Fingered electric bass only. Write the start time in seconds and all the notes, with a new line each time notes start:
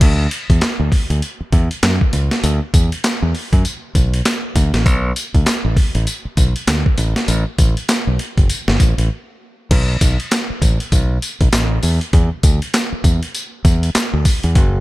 0.01 D2
0.50 E2
0.80 D2
1.10 D2
1.41 muted fingered electric bass stroke
1.53 E2
1.83 F#2
2.13 C#2
2.44 D2
2.74 E2
3.22 E2
3.53 F#2
3.95 B1
4.56 D2
4.74 A1
4.86 B1
5.35 D2
5.65 A1
5.95 A1
6.25 muted fingered electric bass stroke
6.37 B1
6.67 D2
6.98 A1
7.28 A1
7.59 A1
8.07 B1
8.38 F#1
8.68 G1
8.80 A1
8.98 A1
9.71 B1
10.01 B1
10.50 muted fingered electric bass stroke
10.62 A1
10.92 B1
11.41 B1
11.53 A1
11.83 E2
12.13 E2
12.43 D2
12.92 muted fingered electric bass stroke
13.04 E2
13.65 E2
13.95 muted fingered electric bass stroke
14.13 D2
14.44 E2
14.55 F#1